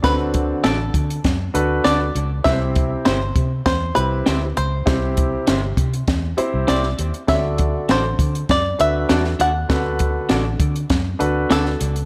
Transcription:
<<
  \new Staff \with { instrumentName = "Five-string banjo" } { \time 4/4 \key d \mixolydian \tempo 4 = 100 b'4 a'2 d''4 | e''4 c''4 c''8 b'4 c''8~ | c''2~ c''8 r8 d''4 | e''4 c''4 d''8 e''4 fis''8~ |
fis''2~ fis''8 r8 a'4 | }
  \new Staff \with { instrumentName = "Clean electric guitar" } { \time 4/4 \key d \mixolydian r4 <d' fis' a' d''>8 r4. <d' fis' a' d''>8 r8 | r4 <c' e' g' c''>8 r4. <c' e' g' c''>8 r8 | r4 <c' e' g' c''>8 r4. <c' e' g' c''>8 r8 | r4 <d' fis' a' d''>8 r4. <d' fis' a' d''>8 <d' fis' a' d''>8 |
r4 <d' fis' a' d''>8 r4. <d' fis' a' d''>8 r8 | }
  \new Staff \with { instrumentName = "Grand piano" } { \time 4/4 \key d \mixolydian <c' d' fis' a'>4 r4. <d' fis' a' b'>4 r8 | <c' e' g' b' c''>4 r4. <c' e' g' e''>4 r8 | <c' e' g' c''>4 r4. <c' e' g' c''>4 r8 | <d' fis' a' cis'' d''>4 r4. <d' fis' a' b'>4 r8 |
<d' fis' a' b'>4 r4. <d' fis' a' b'>4 r8 | }
  \new Staff \with { instrumentName = "Grand piano" } { \clef bass \time 4/4 \key d \mixolydian d4. r2 r8 | c4. r2 r8 | c4. r2 r8 | d4. r2 r8 |
d4. r2 r8 | }
  \new Staff \with { instrumentName = "Fingered electric bass" } { \clef bass \time 4/4 \key d \mixolydian d,4 a,,8 d8 fis,8 d,8 d,8 cis,8 | c,4 g,,8 c8 e,8 c,8 d,8 cis,8 | c,4 g,,8 c8 e,8 r16 c,16 c,8 ees,16 r16 | d,4 a,,8 d8 fis,8 d,8 e,8 ees,8 |
d,4 a,,8 d8 fis,8 d,8 d,8 cis,8 | }
  \new DrumStaff \with { instrumentName = "Drums" } \drummode { \time 4/4 <hh bd sn>8 <hh bd>8 <hh sn>8 <hh bd>16 hh16 <hh bd sn>8 hh8 <hh sn>8 hh8 | <hh bd sn>8 <hh bd>8 <hh sn>8 <hh bd>8 <hh bd sn>8 hh8 <hh sn>8 hh8 | <hh bd sn>8 <hh bd>8 <hh sn>8 <hh bd>16 hh16 <hh bd sn>8 hh8 <hh sn>16 sn16 hh16 hh16 | <hh bd sn>8 <hh bd>8 <hh sn>8 <hh bd>16 hh16 <hh bd sn>8 hh8 <hh sn>16 sn16 hh8 |
<hh bd sn>8 <hh bd>8 <hh sn>8 <hh bd>16 hh16 <hh bd sn>8 hh8 <hh sn>16 sn16 hh16 hh16 | }
>>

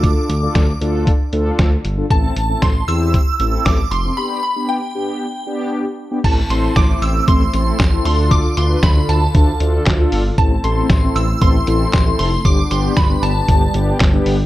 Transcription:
<<
  \new Staff \with { instrumentName = "Synth bell" } { \time 4/4 \key a \minor \tempo 4 = 116 d'''4. r2 r8 | a''4 c'''8 e'''4. d'''8 c'''8 | b''8 b''8 g''4. r4. | a''8 c'''8 d'''8 e'''8 c'''4. c'''8 |
d'''8 c'''8 b''8 a''4 r4. | a''8 c'''4 e'''8 c'''4. c'''8 | d'''8 c'''8 b''8 a''4 r4. | }
  \new Staff \with { instrumentName = "Analog polysynth" } { \time 4/4 \key a \minor <d' f' a'>8 r16 <d' f' a'>8 r16 <d' f' a'>8 r8 <d' f' a'>8. r8 <d' f' a'>16 | <c' e' a'>8 r16 <c' e' a'>8 r16 <c' e' g'>8 r8 <c' e' a'>8. r8 <c' e' a'>16 | <b d' g'>8 r16 <b d' g'>8 r16 <b d' g'>8 r8 <b d' g'>8. r8 <b d' g'>16 | <c' e' a'>16 r16 <c' e' a'>8 r16 <c' e' c''>8 r16 <c' e' a'>16 r16 <c' e' a'>8 r16 <c' e' a'>16 <d' f' a'>8~ |
<d' f' a'>16 r16 <d' f' b'>8 r16 <d' f' a'>8 r16 <d' f' a'>16 r16 <d' f' a'>8 r16 <d' f' a'>8 r16 | <c' e' a'>16 r16 <c' e' a'>8 r16 <c' e' a'>8 r16 <c' e' a'>16 r16 <c' e' a'>8 r16 <c' e' a'>8 r16 | <b d' g'>16 r16 <b d' g'>8 r16 <b d' g'>8 r16 <b d' g'>16 r16 <b d' g'>8 r16 <b d' g'>8 r16 | }
  \new Staff \with { instrumentName = "Analog synth pad" } { \time 4/4 \key a \minor r1 | r1 | r1 | <a c' e'>2.~ <a c' e'>8 <d d' f' a'>8~ |
<d d' f' a'>1 | <a c' e'>1 | <g b d'>1 | }
  \new Staff \with { instrumentName = "Analog synth bass" } { \clef bass \time 4/4 \key a \minor d,8 d,8 d,8 d,8. r16 d,8 d,8 g,,8 | a,,8 a,,8 a,,8 e,8. r16 a,,8 a,,8 f,,8 | r1 | a,,8 a,,8 a,,8 a,,8 a,,8 a,,8 a,,8 d,8~ |
d,8 d,8 d,8 d,8 d,8 d,8 d,8 g,,8 | a,,8 a,,8 a,,8 a,,8 a,,8 a,,8 a,,8 f,,8 | g,,8 g,,8 g,,8 g,,8 g,,8 g,,8 g,,8 g,,8 | }
  \new DrumStaff \with { instrumentName = "Drums" } \drummode { \time 4/4 <hh bd>8 hh8 <hh bd sn>8 hh8 <hh bd>8 hh8 <hh bd sn>8 hh8 | <hh bd>8 hh8 <hh bd sn>8 hh8 <hh bd>8 hh8 <hh bd sn>8 hh8 | r4 r4 r4 r4 | <cymc hh bd>8 hh8 <hh bd sn>8 hh8 <hh bd>8 hh8 <hc hh bd sn>8 hho8 |
<hh bd>8 hh8 <hh bd sn>8 hh8 <hh bd>8 hh8 <hc hh bd sn>8 hho8 | <hh bd>8 hh8 <hh bd sn>8 hh8 <hh bd>8 hh8 <hc hh bd sn>8 hho8 | <hh bd>8 hh8 <hh bd sn>8 hh8 <hh bd>8 hh8 <hc hh bd sn>8 hho8 | }
>>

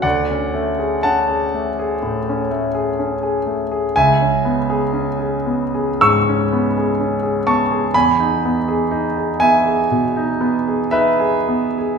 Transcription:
\new Staff \with { instrumentName = "Grand piano" } { \time 4/4 \key d \mixolydian \tempo 4 = 62 << { <d'' fis''>4 <fis'' a''>4. r4. | \key cis \minor <e'' gis''>2 <cis''' e'''>4. <a'' cis'''>8 | <gis'' b''>4. <e'' gis''>4. <b' e''>4 | } \\ { d,16 cis'16 a16 gis'16 cis'16 gis'16 a16 gis'16 a,16 cis'16 a16 gis'16 cis'16 gis'16 a16 gis'16 | cis,16 cis'16 b16 gis'16 cis'16 gis'16 b16 gis'16 gis,16 cis'16 b16 gis'16 cis'16 gis'16 b16 gis'16 | e,16 dis'16 b16 gis'16 dis'16 gis'16 b16 gis'16 b,16 dis'16 b16 gis'16 dis'16 gis'16 b16 gis'16 | } >> }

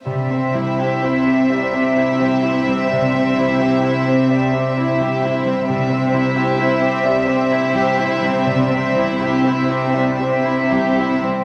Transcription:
<<
  \new Staff \with { instrumentName = "Violin section" } { \time 12/8 \key c \major \tempo 4. = 43 e''1. | e''1. | }
  \new Staff \with { instrumentName = "Harp" } { \time 12/8 \key c \major c16 c'16 g16 e'16 c''16 g'16 e''16 g'16 e'16 g16 c'16 g16 c16 c'16 g16 e'16 c''16 g'16 e''16 g'16 e'16 g16 c'16 g16 | c16 c'16 g16 e'16 c''16 g'16 e''16 g'16 e'16 g16 c'16 g16 c16 c'16 g16 e'16 c''16 g'16 e''16 g'16 e'16 g16 c'16 g16 | }
  \new Staff \with { instrumentName = "Violin section" } { \time 12/8 \key c \major g16 c'16 e'16 g'16 e'16 c'16 g16 c'16 e'16 g'16 e'16 c'16 g16 c'16 e'16 g'16 e'16 c'16 g16 c'16 e'16 g'16 e'16 c'16 | g16 c'16 e'16 g'16 e'16 c'16 g16 c'16 e'16 g'16 e'16 c'16 g16 c'16 e'16 g'16 e'16 c'16 g16 c'16 e'16 g'16 e'16 c'16 | }
  \new Staff \with { instrumentName = "Viola section" } { \time 12/8 \key c \major c'1. | c'1. | }
  \new Staff \with { instrumentName = "Cello section" } { \clef bass \time 12/8 \key c \major c1. | c1. | }
>>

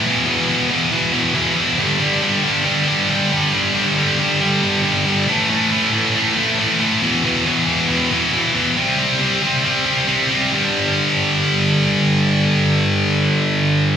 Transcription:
\new Staff \with { instrumentName = "Distorted electric guitar" } { \clef bass \time 4/4 \key g \major \tempo 4 = 137 <e, b, e>8 <e, b, e>8 <e, b, e>8 <e, b, e>8 <e, b, e>8 <e, b, e>8 <e, b, e>8 <e, b, e>8 | <g, d g>8 <g, d g>8 <g, d g>8 <g, d g>8 <g, d g>8 <g, d g>8 <g, d g>8 <g, d g>8 | <g, d g>8 <g, d g>8 <g, d g>8 <g, d g>8 <g, d g>8 <g, d g>8 <g, d g>8 <g, d g>8 | <a, e a>8 <a, e a>8 <a, e a>8 <a, e a>8 <a, e a>8 <a, e a>8 <a, e a>8 <a, e a>8 |
<e, b, e>8 <e, b, e>8 <e, b, e>8 <e, b, e>8 <e, b, e>8 <e, b, e>8 <e, b, e>8 <e, b, e>8 | <c g c'>8 <c g c'>8 <c g c'>8 <c g c'>8 <c g c'>8 <c g c'>8 <c g c'>8 <c g c'>8 | <g, d g>1~ | <g, d g>1 | }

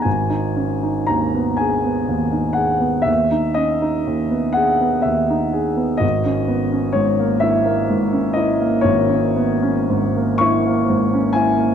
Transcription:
<<
  \new Staff \with { instrumentName = "Grand piano" } { \time 12/8 \key gis \minor \tempo 4. = 41 gis''4 ais''8 gis''4 fis''8 e''8 dis''4 fis''8 e''4 | dis''4 cis''8 e''4 dis''8 cis''4. cis'''4 gis''8 | }
  \new Staff \with { instrumentName = "Grand piano" } { \time 12/8 \key gis \minor gis,,16 dis'16 cis'16 dis'16 dis,16 b16 gis'16 b16 dis,16 dis'16 gis'16 b16 dis,16 dis'16 cis'16 dis'16 dis,16 b16 gis'16 b16 dis,16 dis'16 gis'16 b16 | gis,,16 cis'16 b16 cis'16 gis,16 ais16 e'16 ais16 gis,16 cis'16 e'16 ais16 gis,,16 cis'16 b16 cis'16 gis,16 ais16 e'16 ais16 gis,16 cis'16 e'16 ais16 | }
>>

